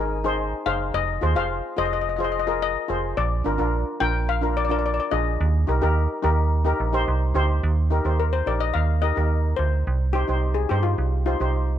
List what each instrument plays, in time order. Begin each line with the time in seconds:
Already playing: fm bass G#1, steel pan D#4 G#4 A#4 G#5
0.24 steel pan D#4 G#4 C5
0.66 fm bass F#1, steel pan D#4 G#4 C5 F5
0.94 fm bass F1, steel pan D#5
1.21 fm bass D#2, steel pan F4 G#4 C5
1.35 fm bass F1, steel pan F4 G#4 C5 F5
1.77 fm bass F1, steel pan F4 G#4 C5 D#5
1.86 steel pan D#5
1.93 steel pan D#5
2.01 steel pan D#5
2.09 steel pan D#5
2.16 steel pan F4 G#4 C5 D#5
2.25 steel pan D#5
2.32 steel pan D#5
2.40 steel pan D#5
2.47 steel pan F4 G#4 A#4 D#5
2.62 steel pan D#5
2.88 fm bass F1, steel pan F4 G#4 C5
3.17 fm bass A#1, steel pan D5
3.44 fm bass G#1, steel pan D4 F4 A#4
3.58 fm bass A#1, steel pan D4 F4 A#4
4.00 fm bass A#1, steel pan D4 F4 A#4 G5
4.29 steel pan F5
4.41 steel pan D4 F4 A#4
4.57 steel pan D5
4.65 steel pan D5
4.69 steel pan D4 F4 A#4 D5
4.79 steel pan D5
4.86 steel pan D5
4.94 steel pan D5
5.00 steel pan D5
5.11 fm bass A#1, steel pan D4 F4 G#4 D#5
5.41 fm bass D#2
5.67 fm bass C2, steel pan D#4 G4 A#4
5.81 fm bass D#2, steel pan D#4 G4 A#4
6.23 fm bass D#2, steel pan D#4 G4 A#4
6.65 steel pan D#4 G4 A#4
6.80 fm bass A#1
6.93 steel pan D#4 G4 C5
7.08 fm bass C2
7.34 fm bass D2, steel pan D#4 G4 C5
7.63 fm bass D#2
7.90 steel pan D#4 G4 A#4
8.04 fm bass D#2, steel pan D#4 G4 C5
8.20 steel pan A#4
8.33 steel pan C5
8.46 fm bass A#1, steel pan D#4 G4 A#4 D5
8.60 steel pan D#5
8.74 fm bass D#2, steel pan F5
9.02 steel pan D#4 G4 A#4 D#5
9.16 fm bass D#2, steel pan D#4 G4 A#4
9.56 fm bass D2, steel pan C5
9.87 fm bass C2
10.13 steel pan D#4 G4 C5
10.28 fm bass C2, steel pan D#4 G4 C5
10.54 steel pan G#4
10.69 fm bass G2, steel pan D#4 G4 C5
10.83 steel pan F4
10.98 fm bass C2
11.26 steel pan D#4 F4 G4 C5
11.40 fm bass C2, steel pan D#4 G4 C5